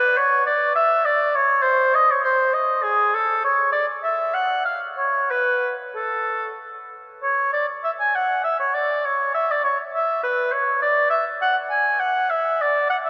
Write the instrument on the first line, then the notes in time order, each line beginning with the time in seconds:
oboe
Already playing: B4
0.17 C#5
0.46 D5
0.75 E5
1.05 D5
1.35 C#5
1.62 C5
1.95 D#5
2.11 C#5
2.24 C5
2.54 D#5
2.83 G#4
3.14 A4
3.44 C#5
3.72 D5
4.03 E5
4.34 F#5
4.65 F5
4.97 C#5
5.31 B4
5.96 A4
7.23 C#5
7.53 D5
7.84 E5
8.00 G#5
8.15 F#5
8.44 E5
8.59 C#5
8.74 D5
9.05 C#5
9.34 E5
9.51 D5
9.64 C#5
9.94 E5
10.23 B4
10.52 C#5
10.82 D5
11.10 E5
11.42 F#5
11.70 G#5
12.00 F#5
12.30 E5
12.61 D5
12.90 F#5
13.05 E5